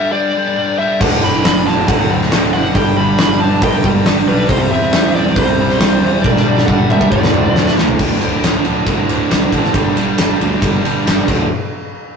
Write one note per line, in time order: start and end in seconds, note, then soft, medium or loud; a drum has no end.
0.00 0.12 G2 medium
0.00 0.13 D3 medium
0.00 0.14 G3 medium
0.00 0.12 E5 loud
0.12 0.35 G2 medium
0.12 0.36 D3 loud
0.12 0.36 G3 loud
0.12 0.75 D5 loud
0.36 0.55 G2 medium
0.36 0.56 D3 medium
0.36 0.57 G3 loud
0.56 0.77 G2 medium
0.56 0.78 D3 medium
0.56 0.78 G3 loud
0.78 0.99 G2 medium
0.78 1.00 D3 medium
0.78 1.00 G3 medium
0.78 0.99 E5 loud
1.00 1.22 D1 medium
1.00 1.21 D2 medium
1.00 1.22 A2 loud
1.00 1.22 D3 loud
1.00 1.24 F#5 loud
1.00 kick loud
1.00 crash loud
1.23 1.44 F#1 medium
1.23 1.44 D2 medium
1.23 1.44 A2 loud
1.23 1.45 D3 medium
1.23 1.64 B5 loud
1.44 1.87 F#1 loud
1.44 1.66 D2 medium
1.44 1.67 A2 medium
1.44 1.68 D3 medium
1.44 snare loud
1.44 open hi-hat medium
1.67 1.88 D2 medium
1.67 1.89 A2 medium
1.67 1.89 D3 medium
1.67 1.88 A5 loud
1.67 snare soft
1.88 2.09 D1 medium
1.88 2.09 D2 loud
1.88 2.10 A2 loud
1.88 2.10 D3 loud
1.88 2.09 F#5 medium
1.88 kick loud
1.88 open hi-hat medium
2.11 2.31 D1 medium
2.11 2.31 D2 loud
2.11 2.32 A2 loud
2.11 2.33 D3 loud
2.22 snare soft
2.31 2.53 D1 medium
2.31 2.51 D2 medium
2.31 2.52 A2 medium
2.31 2.53 D3 loud
2.31 snare loud
2.31 open hi-hat medium
2.53 2.74 F#1 medium
2.53 2.74 D2 medium
2.53 2.74 A2 medium
2.53 2.74 D3 medium
2.53 2.76 F#5 loud
2.74 2.96 G1 loud
2.74 2.96 G2 medium
2.74 2.96 D3 medium
2.74 2.97 G3 loud
2.74 2.96 G5 loud
2.74 kick loud
2.74 open hi-hat medium
2.97 3.18 G1 loud
2.97 3.18 G2 medium
2.97 3.19 D3 medium
2.97 3.20 G3 medium
2.97 3.42 B5 loud
3.18 3.61 G1 loud
3.18 3.40 G2 medium
3.18 3.40 D3 medium
3.18 3.42 G3 medium
3.18 snare loud
3.18 open hi-hat medium
3.40 3.61 G2 medium
3.40 3.61 D3 medium
3.40 3.63 G3 medium
3.40 3.63 A5 loud
3.62 3.83 G1 medium
3.62 3.84 G2 medium
3.62 3.85 D3 loud
3.62 3.86 G3 loud
3.62 3.84 G5 medium
3.62 kick loud
3.62 open hi-hat medium
3.84 4.05 G1 medium
3.84 4.05 G2 medium
3.84 4.06 D3 medium
3.84 4.07 G3 loud
3.84 kick medium
4.06 4.27 G1 medium
4.06 4.26 G2 medium
4.06 4.27 D3 loud
4.06 4.29 G3 loud
4.06 snare loud
4.06 open hi-hat medium
4.28 4.48 B1 medium
4.28 4.48 G2 medium
4.28 4.49 D3 medium
4.28 4.50 G3 loud
4.28 4.49 B4 medium
4.49 4.70 C2 loud
4.49 4.70 C3 medium
4.49 4.71 G3 loud
4.49 4.71 C4 loud
4.49 4.70 C5 loud
4.49 kick loud
4.49 open hi-hat medium
4.71 4.92 E2 medium
4.71 4.92 C3 medium
4.71 4.93 G3 loud
4.71 4.94 C4 loud
4.71 5.12 E5 loud
4.92 5.35 E2 loud
4.92 5.14 C3 medium
4.92 5.15 G3 medium
4.92 5.16 C4 medium
4.92 snare loud
4.92 open hi-hat medium
5.15 5.36 C3 medium
5.15 5.36 G3 medium
5.15 5.37 C4 loud
5.15 5.38 D5 medium
5.15 snare soft
5.36 5.58 C2 loud
5.36 5.58 C3 loud
5.36 5.58 G3 loud
5.36 5.59 C4 loud
5.36 6.26 C5 medium
5.36 kick loud
5.36 open hi-hat medium
5.58 5.79 C2 medium
5.58 5.80 C3 medium
5.58 5.80 G3 medium
5.58 5.80 C4 loud
5.70 snare soft
5.80 6.01 C2 medium
5.80 6.02 C3 medium
5.80 6.03 G3 medium
5.80 6.03 C4 medium
5.80 snare loud
5.80 open hi-hat medium
6.02 6.24 E2 loud
6.02 6.23 C3 medium
6.02 6.24 G3 medium
6.02 6.24 C4 medium
6.22 6.45 G1 medium
6.22 6.45 G2 medium
6.22 6.46 D3 medium
6.22 6.47 G3 loud
6.22 6.68 D5 loud
6.22 kick loud
6.22 high tom medium
6.36 snare medium
6.46 6.67 G1 loud
6.46 6.68 G2 medium
6.46 6.68 D3 medium
6.46 6.69 G3 medium
6.57 snare medium
6.66 7.10 G1 medium
6.66 6.89 G2 medium
6.66 6.90 D3 medium
6.66 6.90 F#5 loud
6.66 kick medium
6.70 6.90 G3 medium
6.90 7.11 G2 medium
6.90 7.11 D3 medium
6.90 7.11 G3 medium
6.90 7.11 E5 loud
6.90 mid tom medium
7.01 kick medium
7.12 7.33 D1 loud
7.12 7.33 D2 medium
7.12 7.33 A2 loud
7.12 7.34 D3 loud
7.12 7.73 D5 medium
7.12 kick loud
7.23 snare medium
7.33 7.55 D1 medium
7.33 7.55 D2 medium
7.33 7.56 A2 medium
7.33 7.56 D3 loud
7.33 mid tom loud
7.56 7.77 D1 medium
7.56 7.77 D2 medium
7.56 7.77 A2 medium
7.56 7.79 D3 loud
7.56 snare medium
7.67 snare medium
7.77 7.98 D2 loud
7.77 7.98 D2 medium
7.77 7.98 A2 medium
7.77 7.99 D3 medium
7.77 snare loud
7.89 floor tom medium
7.99 8.13 D1 medium
7.99 8.21 D2 medium
7.99 8.22 A2 medium
7.99 8.22 D3 medium
7.99 kick loud
7.99 crash loud
8.20 8.35 D1 medium
8.20 8.42 D2 medium
8.20 8.42 A2 medium
8.20 8.43 D3 medium
8.20 ride medium
8.42 8.57 D1 medium
8.42 8.64 D2 medium
8.42 8.64 A2 medium
8.42 8.65 D3 medium
8.42 snare loud
8.42 ride loud
8.64 8.78 D1 medium
8.64 8.85 D2 medium
8.64 8.85 A2 medium
8.64 8.86 D3 medium
8.64 ride medium
8.86 9.01 G1 medium
8.86 9.07 D2 loud
8.86 9.08 A2 medium
8.86 9.09 D3 loud
8.86 kick loud
8.86 ride medium
9.08 9.22 D1 medium
9.08 9.28 D2 medium
9.08 9.29 A2 medium
9.08 9.29 D3 loud
9.08 ride medium
9.30 9.45 C2 medium
9.30 9.51 D2 medium
9.30 9.51 A2 medium
9.30 9.52 D3 medium
9.30 snare loud
9.30 ride medium
9.52 9.66 A1 medium
9.52 9.73 D2 medium
9.52 9.73 A2 medium
9.52 9.73 D3 medium
9.52 kick medium
9.52 ride medium
9.64 snare soft
9.74 9.88 G1 loud
9.74 9.94 G2 medium
9.74 9.95 D3 medium
9.74 9.95 G3 loud
9.74 kick loud
9.74 ride medium
9.95 10.11 G1 medium
9.95 10.17 G2 medium
9.95 10.17 D3 medium
9.95 10.17 G3 medium
9.95 ride medium
10.18 10.33 G1 medium
10.18 10.38 G2 medium
10.18 10.39 D3 medium
10.18 10.40 G3 medium
10.18 snare loud
10.18 ride loud
10.39 10.55 D2 medium
10.39 10.59 G2 medium
10.39 10.60 D3 medium
10.39 10.61 G3 medium
10.39 ride medium
10.60 10.76 G1 medium
10.60 10.82 G2 loud
10.60 10.83 D3 loud
10.60 10.83 G3 loud
10.60 kick loud
10.60 ride medium
10.83 10.98 G1 medium
10.83 11.03 G2 medium
10.83 11.04 D3 loud
10.83 11.04 G3 medium
10.83 ride medium
11.04 11.20 G1 medium
11.04 11.26 G2 medium
11.04 11.26 D3 medium
11.04 11.26 G3 loud
11.04 snare loud
11.04 ride loud
11.26 11.48 D1 loud
11.26 11.44 D2 medium
11.26 11.45 A2 medium
11.26 11.45 D3 loud
11.26 kick loud
11.26 crash medium